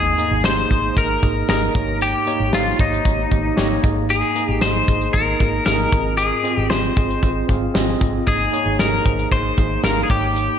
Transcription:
Already playing: G#1 G#2 A#3 D#4 G#4 D#5
0.18 A#3 D#4 G#4 D#5, closed hi-hat
0.31 G#1
0.44 G#1 A#3 D#4 G#4 C5 D#5, snare, closed hi-hat
0.71 G#1 A#3 D#4 G#4 D#5, kick, closed hi-hat
0.96 G#1 A#3 D#4 G#4 A#4 D#5, kick, closed hi-hat
1.22 G#1 A#3 D#4 G#4 D#5, kick, closed hi-hat
1.48 G#1 A#3 D#4 G#4 A#4 D#5, snare, closed hi-hat
1.74 G#1 G#2 A#3 D#4 G4 C#5, kick, closed hi-hat
2.01 G4, closed hi-hat
2.27 A#3 D#4 G4 C#5, closed hi-hat
2.40 G#1
2.52 G#1 A#3 D#4 F4 G4 C5, snare, closed hi-hat
2.79 G#1 A#3 D#4 G4 C#5, kick, closed hi-hat
2.93 closed hi-hat
3.04 G#1 A#3 D#4 G4 C#5, kick, closed hi-hat
3.31 G#1 A#3 D#4 G4 D#5, kick, closed hi-hat
3.56 G#1 A#3 D#4 G4 C#5, snare, closed hi-hat
3.83 G#1 G#2 A#3 D#4 G#4 D#5, kick, closed hi-hat
4.10 G#4, closed hi-hat
4.35 A#3 D#4 G#4 D#5, closed hi-hat
4.49 G#1 G4
4.61 G#1 A#3 D#4 G#4 C5 D#5, snare, closed hi-hat
4.88 G#1 A#3 D#4 G#4 D#5, kick, closed hi-hat
5.01 closed hi-hat
5.13 G#1 A#3 D#4 G#4 A#4 D#5, kick, closed hi-hat
5.40 G#1 A#3 D#4 G#4 A#4, kick, closed hi-hat
5.66 G#1 A#3 D#4 G#4 A#4 D#5, snare, closed hi-hat
5.92 G#1 G#2 C4 F4 G#4 D#5, kick, closed hi-hat
6.17 G#4, closed hi-hat
6.43 C4 F4 G#4 D#5, closed hi-hat
6.57 G#1 G4
6.70 C4 F4 G#4 C5 D#5, snare, closed hi-hat
6.96 G#1 C4 F4 G#4 D#5, kick, closed hi-hat
7.10 closed hi-hat
7.22 G#1 C4 F4 G#4 D#5, kick, closed hi-hat
7.48 G#1 C4 F4 G#4 F5, kick, closed hi-hat
7.74 G#1 C4 F4 G#4 D#5, snare, closed hi-hat
8.01 G#1 C4 F4 G#4 D#5, kick, closed hi-hat
8.27 G#1 G#2 A#3 D#4 G#4 D#5, kick, closed hi-hat
8.52 A#3 D#4 G#4 C#5, closed hi-hat
8.66 G#1
8.79 G#1 A#3 D#4 G#4 A#4 D#5, snare, closed hi-hat
9.05 G#1 A#3 D#4 G#4 C5, kick, closed hi-hat
9.19 closed hi-hat
9.31 G#1 A#3 D#4 G#4 C5 D#5, kick, closed hi-hat
9.57 G#1 A#3 D#4 G#4 D#5, kick, closed hi-hat
9.83 G#1 A#3 D#4 G#4 A#4 F5, snare, closed hi-hat
10.03 G#4
10.09 G#1 G#2 A#3 D#4 G4 C#5, kick, closed hi-hat
10.36 closed hi-hat

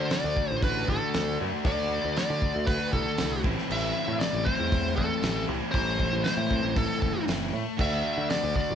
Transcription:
Already playing: D3 A3 D4 F#4
0.10 D5, snare, open hi-hat, tambourine
0.24 D2
0.37 kick
0.51 A1
0.62 D3 A3 D4 F#4 B4, kick, open hi-hat
0.88 A1 A4, kick
1.14 D2, snare, open hi-hat, tambourine
1.38 F#2 D3 A3 D4 F#4
1.64 D2 D3 A3 D4 F#4 D5, kick, open hi-hat
2.05 D2
2.16 D5, snare, open hi-hat, tambourine
2.30 D3
2.42 kick
2.55 D2
2.66 D3 A3 D4 F#4 B4, kick, open hi-hat
2.93 C2 A4, kick
3.18 C2, snare, open hi-hat, tambourine
3.43 A1 A2 E3 A3 C4 E4, kick
3.59 snare
3.70 A1 E5, crash
4.08 A2
4.20 D5, snare, open hi-hat, tambourine
4.33 A1
4.45 A3 C4 E4 C5, kick
4.49 A2 E3
4.60 E2
4.72 kick, open hi-hat
4.96 E2 A4, kick
5.22 A1 A2 E3 A3 C4 E4, snare, open hi-hat, tambourine
5.48 C2 A2 E3 A3 C4 E4
5.71 A1 C5, kick, open hi-hat
6.00 kick
6.12 A1
6.24 C5, snare, open hi-hat, tambourine
6.37 A2
6.50 A2 E3 A3 C4 E4, kick
6.63 A1
6.76 A4, kick, open hi-hat
7.02 F#1, kick
7.27 F#1 A2 E3 A3 C4 E4, snare, open hi-hat, tambourine
7.53 A2
7.77 D2 D3 A3 D4 F#4, kick, crash
7.81 E5
8.18 D3
8.30 D5, snare, open hi-hat, tambourine
8.44 D2
8.55 D5, kick
8.70 A1

